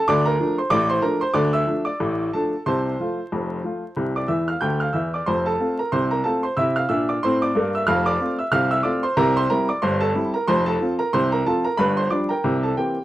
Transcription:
X:1
M:2/4
L:1/16
Q:"Swing 16ths" 1/4=92
K:F
V:1 name="Upright piano"
[dd'] [Bb]2 [cc'] [dd'] [cc'] [Bb] [cc'] | [dd'] [ee']2 [dd']3 [Aa]2 | [cac']8- | [cac'] [dd'] [ee'] [ff'] [gg'] [ff'] [ee'] [dd'] |
[cc'] [Aa]2 [Bb] [cc'] [Bb] [Aa] [cc'] | [ee'] [ff'] [ee'] [dd'] [cc'] [dd']2 [ee'] | [ff'] [dd']2 [ee'] [ff'] [ee'] [dd'] [cc'] | [Bb] [cc'] [Bb] [dd'] [cc'] [Aa]2 [Bb] |
[cc'] [Aa]2 [Bb] [cc'] [Bb] [Aa] [Bb] | [=B=b] [cc'] [dd'] [_Bg_b]2 [Aa] [Gg]2 |]
V:2 name="Upright piano" clef=bass
[D,,D,]2 [F,A,D]2 [A,,,A,,]2 [F,A,D]2 | [D,,D,]2 [F,A,D]2 [A,,,A,,]2 [F,A,D]2 | [C,,C,]2 [F,A,F]2 [F,,,F,,]2 [F,A,F]2 | [C,,C,]2 [E,,E,]2 [D,,D,]2 [E,,E,]2 |
[F,,,F,,]2 [A,CF]2 [C,,C,]2 [A,CF]2 | [C,E]2 [B,,D]2 [A,,C]2 [G,,B,]2 | [F,,,F,,]2 [A,CF]2 [C,,C,]2 [A,CF]2 | [C,,C,]2 [G,CE]2 [G,,,G,,]2 [G,CE]2 |
[F,,,F,,]2 [F,CF]2 [C,,C,]2 [F,CF]2 | [G,,,G,,]2 [F,G,D]2 [C,,C,]2 [E,B,C]2 |]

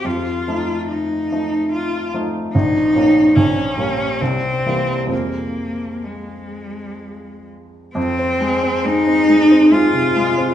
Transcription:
X:1
M:3/4
L:1/16
Q:1/4=69
K:Fm
V:1 name="Cello"
F4 E4 F2 z2 | E4 D4 C4 | B,4 A,6 z2 | C4 E4 F4 |]
V:2 name="Grand piano" clef=bass
F,,2 [F,=A,E]4 [F,A,E]4 [F,A,E]2 | B,,,2 [F,B,D]2 B,,,2 [G,B,D]2 C,,2 [=E,G,B,]2 | [F,,F,A,C]12 | F,, C A, C A, C A, C A, C, A, C |]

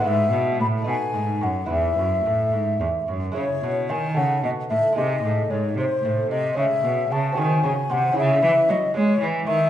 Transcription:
X:1
M:6/8
L:1/8
Q:3/8=75
K:E
V:1 name="Flute"
e2 b g2 f | e4- e z | [K:C#m] c2 g f d e | d2 c ^B2 d |
e2 a g2 f | e2 d c2 e |]
V:2 name="Lute"
[G,B,EB]3 [A,DB]3 | [G,EB]6 | [K:C#m] [G,Ec]3 [DA]3 | [G,DG]6 |
[G,CG]3 [^B,FG]3 | [CEG]6 |]
V:3 name="Lute" clef=bass
G,, B,, A,, B,, G,, F,, | E,, F,, A,, G,, E,, F,, | [K:C#m] C, B,, D, C, B,, A,, | ^B,, A,, G,, B,, A,, B,, |
C, B,, C, D, C, ^B,, | C, E, F, G, E, D, |]
V:4 name="Cello" clef=bass
G,, B,, A,, B,, G,, F,, | E,, F,, A,, G,, E,, F,, | [K:C#m] C, B,, D, C, B,, A,, | ^B,, A,, G,, B,, A,, B,, |
C, B,, C, D, C, ^B,, | C, E, F, G, E, D, |]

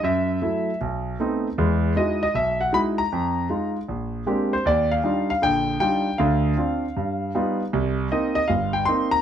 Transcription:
X:1
M:4/4
L:1/8
Q:"Swing" 1/4=156
K:Eb
V:1 name="Grand piano"
_f4 z4 | z2 ^d d =e ^f =b _b- | b3 z4 c | d f2 f g2 g2 |
f6- f z | z2 e e f g c' b |]
V:2 name="Grand piano"
_G,,2 [_G,=A,_F] z =B,,,2 [A,=B,C^D] z | [=E,,^G,]2 [G,^D=E^F] z =B,,,2 [G,DEF] z | F,,2 [A,EF] z B,,,2 [A,B,CDG] z | E,,2 [G,DEF] z [B,,,D,]2 [G,DEF] z |
[D,,D,]2 [CDF] z G,,2 [G,=B,^DF] z | C,,2 [B,CE] z G,,,2 [B,CE] z |]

